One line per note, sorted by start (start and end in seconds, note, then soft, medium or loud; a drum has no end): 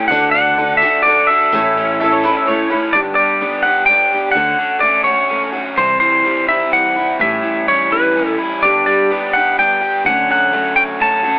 0.00 0.10 A3 medium
0.00 0.10 C#4 medium
0.00 0.10 E4 medium
0.00 0.11 E4 medium
0.00 0.58 A4 medium
0.00 0.11 C#5 medium
0.08 0.81 D2 loud
0.08 0.56 D3 medium
0.08 0.57 D4 medium
0.08 0.50 F#4 medium
0.08 0.57 F#4 medium
0.08 0.50 A4 medium
0.08 0.60 A4 loud
0.08 0.50 D5 medium
0.08 0.30 F#5 loud
0.08 tambourine medium
0.31 1.29 D4 medium
0.31 0.76 F#5 loud
0.58 0.81 D3 medium
0.58 0.82 D4 medium
0.58 0.97 F#4 medium
0.58 0.82 F#4 medium
0.58 0.97 A4 medium
0.58 0.81 A4 medium
0.58 0.97 D5 medium
0.77 1.01 E5 medium
0.82 1.05 D4 soft
0.82 1.06 F#4 soft
0.82 1.05 A4 medium
0.82 tambourine medium
1.03 1.52 D3 medium
1.03 1.53 D4 medium
1.03 1.52 F#4 medium
1.03 1.52 A4 medium
1.03 1.28 D5 medium
1.03 1.52 D5 medium
1.03 tambourine soft
1.07 1.53 F#4 medium
1.07 1.53 A4 medium
1.27 1.53 D4 medium
1.27 2.42 E5 medium
1.42 tambourine soft
1.52 2.23 A1 loud
1.52 1.99 A2 medium
1.52 2.00 A3 medium
1.52 2.00 C#4 medium
1.52 1.92 E4 medium
1.52 2.00 E4 loud
1.52 1.92 A4 medium
1.52 2.00 A4 medium
1.52 1.92 C#5 medium
1.52 tambourine loud
1.77 2.69 C#4 medium
1.77 tambourine soft
1.99 2.23 A3 medium
1.99 2.24 C#4 medium
1.99 2.39 E4 medium
1.99 2.24 E4 medium
1.99 2.39 A4 medium
1.99 2.23 A4 medium
1.99 2.39 C#5 medium
1.99 2.11 E5 medium
1.99 tambourine soft
2.12 2.23 C#5 medium
2.23 2.48 C#4 soft
2.23 2.47 E4 soft
2.23 2.47 A4 medium
2.23 2.35 B4 medium
2.23 tambourine loud
2.37 2.46 E5 medium
2.46 2.71 A3 medium
2.46 2.71 C#4 medium
2.46 2.93 E4 medium
2.46 2.93 A4 medium
2.46 2.93 C#5 medium
2.46 2.69 C#5 medium
2.51 2.71 E4 medium
2.51 2.70 A4 medium
2.71 2.94 C#4 soft
2.71 2.95 E4 medium
2.71 2.94 A4 medium
2.71 2.93 B4 medium
2.93 3.11 G1 medium
2.93 3.41 G2 medium
2.93 3.41 D3 medium
2.93 3.40 G3 medium
2.93 3.40 B3 medium
2.93 3.42 D4 medium
2.93 3.41 G4 medium
2.93 2.99 D5 medium
3.15 4.35 G3 medium
3.15 3.65 D5 medium
3.41 3.64 G3 medium
3.41 3.65 B3 medium
3.41 3.64 D4 medium
3.41 3.63 G4 medium
3.63 3.88 G3 soft
3.63 3.88 B3 soft
3.63 3.89 D4 soft
3.63 3.88 G4 soft
3.63 3.85 F#5 medium
3.86 4.12 G3 medium
3.86 4.12 B3 medium
3.86 4.31 G5 loud
3.90 4.13 D4 medium
3.90 4.11 G4 medium
4.13 4.36 G3 soft
4.13 4.35 B3 soft
4.13 4.36 D4 soft
4.13 4.36 G4 soft
4.31 4.53 D2 medium
4.31 4.82 F#5 loud
4.36 4.80 D3 medium
4.36 4.81 A3 medium
4.36 4.83 C#4 medium
4.36 4.83 F#4 medium
4.59 5.78 D3 medium
4.80 5.06 D3 medium
4.80 5.06 A3 medium
4.80 5.07 C#4 medium
4.80 5.04 D5 medium
4.85 5.06 F#4 medium
5.04 5.31 C#4 soft
5.04 5.30 F#4 soft
5.04 5.49 C#5 medium
5.09 5.29 A3 soft
5.30 5.54 D3 medium
5.30 5.54 A3 medium
5.30 5.52 C#4 medium
5.30 5.51 F#4 medium
5.52 5.77 A3 soft
5.52 5.77 C#4 soft
5.52 5.77 F#4 soft
5.77 5.95 C2 medium
5.77 6.25 C3 medium
5.77 6.23 E3 medium
5.77 6.25 G3 medium
5.77 6.25 C4 medium
5.77 6.26 E4 medium
5.77 5.99 C5 medium
6.00 7.20 E3 medium
6.00 6.48 C5 medium
6.24 6.48 E3 medium
6.24 6.49 G3 medium
6.24 6.48 C4 medium
6.24 6.46 E4 medium
6.47 6.71 G3 soft
6.47 6.72 C4 soft
6.47 6.72 E4 soft
6.47 6.71 E5 medium
6.71 6.95 E3 medium
6.71 6.96 G3 medium
6.71 6.97 C4 medium
6.71 6.95 E4 medium
6.71 7.17 F#5 loud
6.96 7.20 G3 soft
6.96 7.21 C4 soft
6.96 7.20 E4 soft
7.19 7.37 A1 medium
7.19 7.67 A2 medium
7.19 7.67 E3 medium
7.19 7.68 G3 medium
7.19 7.68 C#4 medium
7.19 7.68 E4 medium
7.19 7.68 E5 medium
7.43 8.62 E3 medium
7.68 7.91 E3 soft
7.68 7.92 G3 medium
7.68 7.91 C#4 medium
7.68 7.91 E4 medium
7.68 7.92 C#5 medium
7.92 8.14 G3 soft
7.92 8.15 C#4 soft
7.92 8.15 E4 soft
7.92 8.36 B4 medium
8.14 8.62 E3 soft
8.14 8.62 G3 medium
8.14 8.63 C#4 medium
8.14 8.64 E4 medium
8.39 8.62 E4 medium
8.62 8.81 G1 medium
8.62 9.10 G2 medium
8.62 9.10 D3 medium
8.62 9.09 G3 medium
8.62 9.10 B3 medium
8.62 9.13 D4 medium
8.62 9.11 G4 medium
8.62 8.85 D5 medium
8.86 10.05 G3 medium
8.86 9.35 D5 medium
9.10 9.34 G3 medium
9.10 9.34 B3 medium
9.10 9.35 D4 medium
9.10 9.34 G4 medium
9.33 9.58 B3 soft
9.33 9.59 D4 soft
9.33 9.58 G4 soft
9.33 9.58 F#5 medium
9.38 9.57 G3 soft
9.59 10.05 G3 medium
9.59 10.06 B3 medium
9.59 10.06 D4 medium
9.59 10.07 G4 medium
9.59 10.06 G5 medium
9.82 10.05 G4 medium
10.05 10.23 D2 medium
10.05 10.53 D3 medium
10.05 10.52 F#3 medium
10.05 10.52 A3 medium
10.05 10.53 C#4 medium
10.05 10.54 F#4 medium
10.05 10.30 F#5 loud
10.30 11.39 F#3 medium
10.30 10.76 F#5 medium
10.53 10.98 F#3 medium
10.53 10.99 A3 medium
10.53 10.99 C#4 medium
10.53 11.00 F#4 medium
10.76 11.23 F#4 medium
10.76 10.82 G5 medium
10.99 11.23 F#3 medium
10.99 11.24 A3 medium
10.99 11.23 C#4 medium
10.99 11.22 F#4 medium
10.99 11.39 A5 medium
11.23 11.39 A3 soft
11.23 11.39 C#4 soft
11.23 11.39 F#4 soft